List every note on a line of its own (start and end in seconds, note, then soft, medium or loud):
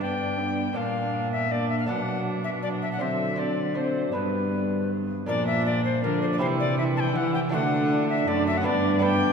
0.00 0.72 G2 medium
0.00 0.74 G2 medium
0.00 0.72 B3 soft
0.00 0.40 B3 medium
0.00 0.41 D4 medium
0.00 0.73 D4 soft
0.00 0.74 D5 soft
0.00 0.78 G5 medium
0.38 0.76 B3 medium
0.38 0.75 D4 medium
0.73 1.90 A#2 medium
0.73 1.85 A#2 medium
0.73 1.83 A#3 soft
0.73 1.47 A#3 medium
0.73 1.84 D4 soft
0.73 1.85 D5 soft
0.73 1.32 F5 medium
0.77 1.47 D4 medium
1.32 1.53 E5 medium
1.51 1.90 A#3 medium
1.51 1.88 D4 medium
1.51 1.69 D5 medium
1.69 1.79 E5 medium
1.79 1.87 F5 medium
1.86 3.00 B2 medium
1.86 2.97 B2 medium
1.86 2.47 F#3 medium
1.86 2.96 D4 soft
1.86 2.62 D4 medium
1.86 2.97 D5 medium
1.86 2.21 F#5 medium
2.44 2.50 E5 medium
2.63 3.00 F#3 medium
2.63 3.02 D4 medium
2.63 2.69 D5 medium
2.82 2.91 E5 medium
2.92 3.03 F#5 medium
2.99 4.12 D3 medium
2.99 4.10 D3 medium
2.99 3.38 F#3 medium
2.99 3.38 C4 medium
2.99 3.35 D4 soft
2.99 3.36 C5 soft
2.99 3.41 E5 medium
3.36 3.76 F#3 medium
3.36 3.75 C4 medium
3.36 3.73 D4 soft
3.36 3.74 C5 soft
3.36 3.76 D5 medium
3.74 4.16 F#3 medium
3.74 4.13 C4 medium
3.74 4.11 D4 soft
3.74 4.13 C5 soft
3.74 4.16 C5 medium
4.12 5.07 G2 medium
4.12 5.05 G2 soft
4.12 5.09 G3 medium
4.12 5.07 B3 medium
4.12 5.23 D4 soft
4.12 5.24 B4 soft
4.12 4.90 B4 medium
5.26 6.05 A#2 medium
5.26 6.00 A#2 medium
5.26 5.99 F3 medium
5.26 6.36 D4 medium
5.26 5.99 D4 medium
5.26 6.37 A#4 medium
5.26 5.46 D5 loud
5.47 5.65 E5 loud
5.66 5.84 D5 loud
5.85 6.02 C5 loud
6.03 6.42 D3 medium
6.03 6.37 D3 medium
6.03 6.40 F3 medium
6.03 6.40 D4 medium
6.03 6.21 A#4 medium
6.22 6.26 C5 loud
6.33 6.37 D5 medium
6.38 7.17 C3 medium
6.38 7.12 C3 medium
6.38 6.78 E3 medium
6.38 7.48 C4 medium
6.38 7.49 E4 medium
6.38 6.77 E4 medium
6.38 7.49 G4 medium
6.38 6.47 C5 loud
6.60 6.78 D5 loud
6.78 7.55 E3 medium
6.78 7.55 E4 medium
6.78 6.84 E5 loud
6.97 7.18 G5 loud
6.97 7.01 A5 loud
7.15 7.49 E3 medium
7.15 7.52 E3 medium
7.15 7.33 F#5 loud
7.34 7.40 G5 loud
7.49 8.26 D3 medium
7.49 8.23 D3 medium
7.49 8.60 A3 medium
7.49 8.27 A3 medium
7.49 8.60 D4 medium
7.49 8.27 D4 medium
7.49 8.61 F#4 medium
7.49 8.08 F#5 loud
8.10 8.29 E5 loud
8.27 8.66 F#2 medium
8.27 8.61 F#2 medium
8.27 8.66 A3 medium
8.27 8.64 D4 medium
8.27 8.46 D5 loud
8.47 8.59 E5 loud
8.58 8.98 B3 medium
8.58 8.67 F#5 loud
8.63 9.33 G2 medium
8.63 9.02 B3 medium
8.63 8.99 D4 medium
8.63 9.02 D4 medium
8.63 9.01 B4 medium
8.63 9.04 D5 loud
8.99 9.33 B3 medium
8.99 9.33 D4 medium
8.99 9.33 B4 medium
8.99 9.33 G5 loud